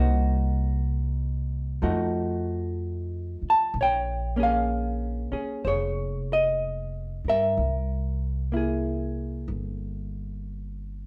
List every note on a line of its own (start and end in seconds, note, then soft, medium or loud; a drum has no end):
0.00 1.79 C2 medium
0.00 1.81 A#3 soft
0.00 1.82 D#4 soft
0.00 1.82 F#4 soft
0.00 2.42 C5 medium
1.82 3.37 F2 medium
1.82 3.73 F3 soft
1.82 3.73 A3 soft
1.82 3.73 D#4 soft
1.82 3.73 F#4 soft
3.42 muted upright bass stroke soft
3.50 3.78 A5 medium
3.74 5.28 A#1 medium
3.81 4.39 C#5 medium
3.81 4.43 G5 medium
4.36 7.55 A#3 soft
4.36 5.31 C#4 soft
4.36 5.32 G#4 soft
4.43 5.31 F5 medium
5.32 5.67 C#4 soft
5.32 5.64 G#4 soft
5.32 muted upright bass stroke soft
5.65 7.19 F1 medium
5.65 7.53 G#4 medium
5.65 5.67 C5 medium
5.65 6.31 C#5 medium
6.33 7.29 D#5 medium
7.25 7.54 G2 medium
7.25 8.56 A#4 medium
7.29 10.10 E5 medium
7.57 9.44 C2 medium
8.52 11.07 A#3 soft
8.52 11.07 E4 soft
8.57 11.07 G#4 soft
9.48 11.07 G1 medium